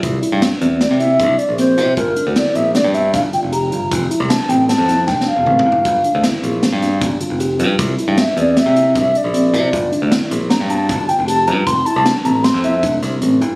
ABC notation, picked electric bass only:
X:1
M:5/4
L:1/16
Q:1/4=155
K:Gdor
V:1 name="Picked electric bass" clef=bass
C,,2 z G,,2 z E,,3 C,3 C,,2 z B,,,3 C,2 | G,,,2 z D,,2 z B,,,3 G,,3 G,,,2 z F,,,3 G,,,2 | F,,,2 z C,,2 z A,,,3 F,,3 F,,,2 z E,,, A,,,2 G,,,2 | G,,,2 z D,,2 z B,,,3 G,,3 G,,,2 z F,,,3 G,,2 |
C,,2 z G,,2 z E,,3 C,3 C,,2 z B,,,3 C,2 | G,,,2 z D,,2 z B,,,3 G,,3 G,,,2 z F,,,3 G,,2 | F,,,2 z C,,2 z A,,,3 F,,3 F,,,2 C,,2 A,,,2 G,,,2 |]